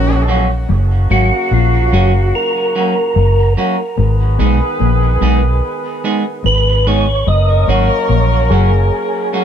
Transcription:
0.00 0.65 A#1 medium
0.00 0.11 A#2 medium
0.00 0.46 D#3 medium
0.00 0.46 F#3 loud
0.00 0.24 C#4 medium
0.00 0.46 C#4 medium
0.00 0.46 F#4 loud
0.28 0.46 F#3 medium
0.28 0.47 A#3 medium
0.28 0.47 C#4 medium
0.28 0.47 F#4 medium
0.68 1.08 F#1 loud
0.68 0.93 F#2 medium
0.68 3.52 C#3 medium
0.68 3.52 F#3 medium
0.68 3.52 A#3 medium
0.68 3.52 F#4 medium
1.10 1.30 G#1 medium
1.10 1.23 G#2 medium
1.10 1.29 F#3 medium
1.10 1.29 A#3 medium
1.10 1.29 C#4 medium
1.10 1.29 F#4 medium
1.10 1.53 F#4 medium
1.51 1.90 A#1 medium
1.51 1.76 A#2 medium
1.51 1.95 F4 medium
1.92 2.31 F#1 medium
1.92 2.18 F#2 medium
1.92 2.11 F#3 medium
1.92 2.11 A#3 loud
1.92 2.11 C#4 loud
1.92 2.11 F#4 medium
1.92 2.35 F#4 medium
2.35 3.54 A#4 medium
2.75 2.93 F#3 medium
2.75 2.94 A#3 medium
2.75 2.94 C#4 medium
2.75 2.94 F#4 medium
3.16 3.54 F#1 medium
3.16 3.40 F#2 medium
3.57 3.76 F#3 medium
3.57 3.76 A#3 medium
3.57 3.76 C#4 loud
3.57 3.76 F#4 loud
3.97 4.37 G#1 loud
3.97 4.22 G#2 medium
3.97 6.82 D#3 medium
3.97 6.82 B3 medium
3.97 6.82 G#4 loud
3.97 6.82 B4 medium
4.39 4.59 B1 medium
4.39 4.52 B2 medium
4.39 4.58 G#3 medium
4.39 4.58 B3 medium
4.39 4.58 D#4 medium
4.39 4.58 G#4 medium
4.80 5.19 A#1 medium
4.80 5.05 A#2 medium
5.21 5.60 B1 medium
5.21 5.46 B2 medium
5.21 5.40 G#3 medium
5.21 5.40 B3 medium
5.21 5.40 D#4 medium
5.21 5.40 G#4 loud
6.04 6.22 G#3 medium
6.04 6.22 B3 medium
6.04 6.23 D#4 loud
6.04 6.23 G#4 loud
6.44 7.23 G#1 medium
6.44 6.69 G#2 medium
6.44 6.88 B4 medium
6.86 7.05 G#3 medium
6.86 7.05 B3 medium
6.86 7.05 D#4 medium
6.86 7.05 G#4 medium
6.86 7.29 C#5 loud
7.26 7.66 F#1 loud
7.26 7.52 F#2 medium
7.26 9.44 F#3 medium
7.26 9.44 A#3 medium
7.26 9.44 C#4 medium
7.26 9.44 A#4 loud
7.26 7.70 D#5 loud
7.68 7.88 G#1 loud
7.68 7.81 G#2 medium
7.68 7.87 F#3 medium
7.68 7.87 A#3 medium
7.68 7.87 C#4 medium
7.68 7.87 F#4 loud
7.68 8.53 C#5 loud
8.09 8.48 A#1 medium
8.09 8.34 A#2 medium
8.50 8.89 F#1 medium
8.50 8.75 F#2 medium
8.50 8.69 F#3 medium
8.50 8.69 A#3 medium
8.50 8.70 C#4 medium
8.50 8.70 F#4 medium
8.50 9.44 G#4 medium
9.33 9.44 F#3 medium
9.33 9.44 A#3 medium
9.33 9.44 C#4 medium
9.33 9.44 F#4 medium

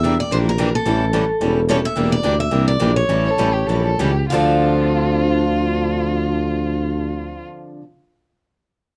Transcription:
0.00 0.20 E2 medium
0.00 0.13 E3 medium
0.00 0.13 G3 medium
0.00 0.17 E5 medium
0.04 0.14 A#3 medium
0.04 0.14 D4 medium
0.04 0.14 E4 loud
0.04 0.14 G4 medium
0.04 0.14 A#4 medium
0.20 0.32 D5 medium
0.31 0.75 A#1 medium
0.31 0.49 E3 medium
0.31 0.49 G3 soft
0.31 0.50 A#3 medium
0.31 0.49 D4 medium
0.31 0.50 E4 medium
0.31 0.50 G4 medium
0.31 0.50 A#4 medium
0.31 0.37 C5 medium
0.49 0.75 A#4 medium
0.58 0.69 E3 medium
0.58 0.69 G3 medium
0.58 0.68 A#3 medium
0.58 0.69 D4 medium
0.58 0.69 E4 medium
0.58 0.69 G4 medium
0.58 0.69 A#4 loud
0.75 1.53 A4 medium
0.86 1.30 A1 medium
0.86 1.05 E3 medium
0.86 1.05 G3 medium
0.86 1.05 C#4 medium
0.86 1.05 E4 medium
0.86 1.05 A4 medium
1.13 1.23 E3 medium
1.13 1.24 G3 medium
1.13 1.24 C#4 medium
1.13 1.24 E4 medium
1.13 1.24 A4 medium
1.41 1.85 E1 medium
1.41 1.59 E3 soft
1.41 1.60 G3 medium
1.41 1.60 C#4 medium
1.41 1.60 E4 medium
1.41 1.60 A4 medium
1.68 1.78 E3 medium
1.68 1.79 G3 medium
1.68 1.79 C#4 medium
1.68 1.79 E4 medium
1.68 1.79 A4 loud
1.68 1.76 C#5 medium
1.85 2.12 E5 medium
1.96 2.18 E1 medium
1.96 2.14 E3 medium
1.96 2.14 G3 medium
1.96 2.14 A#3 medium
1.96 2.15 D4 medium
1.96 2.15 E4 medium
1.96 2.15 G4 medium
1.96 2.15 A#4 medium
2.12 2.38 D5 medium
2.24 2.48 D2 medium
2.24 2.34 E3 medium
2.24 2.34 G3 medium
2.24 2.34 A#3 medium
2.24 2.34 D4 medium
2.24 2.34 E4 medium
2.24 2.34 G4 medium
2.24 2.34 A#4 loud
2.40 2.67 E5 medium
2.51 2.76 C2 medium
2.51 2.70 E3 medium
2.51 2.71 G3 soft
2.51 2.70 A#3 medium
2.51 2.70 D4 medium
2.51 2.71 E4 medium
2.51 2.70 G4 medium
2.51 2.71 A#4 medium
2.68 2.94 D5 medium
2.80 3.04 A#1 medium
2.80 2.91 E3 medium
2.80 2.91 G3 medium
2.80 2.90 A#3 medium
2.80 2.91 D4 medium
2.80 2.91 E4 medium
2.80 2.90 G4 medium
2.80 2.91 A#4 medium
2.96 3.95 C#5 medium
3.08 3.32 A1 medium
3.08 3.28 E3 medium
3.08 3.28 G3 medium
3.08 3.28 C#4 medium
3.08 3.28 E4 medium
3.08 3.28 A4 medium
3.25 3.32 C#5 medium
3.30 3.55 A4 medium
3.37 3.63 A1 medium
3.37 3.49 E3 medium
3.37 3.49 G3 medium
3.37 3.49 C#4 medium
3.37 3.49 E4 medium
3.37 3.49 A4 medium
3.53 3.68 G4 medium
3.67 3.93 A#1 medium
3.67 3.88 E3 medium
3.67 3.88 G3 medium
3.67 3.89 C#4 medium
3.67 3.89 E4 soft
3.67 3.84 A4 medium
3.67 3.89 A4 medium
3.85 4.01 A4 medium
3.98 4.25 C#2 medium
3.98 4.11 E3 medium
3.98 4.11 G3 medium
3.98 4.11 C#4 medium
3.98 4.11 E4 medium
3.98 4.31 G4 medium
3.98 4.11 A4 medium
4.30 7.44 D2 medium
4.30 7.80 D3 medium
4.30 7.81 F3 medium
4.30 7.82 C4 medium
4.30 7.83 D4 medium
4.30 7.45 F4 medium
4.30 7.84 A4 medium
4.30 7.44 F5 medium

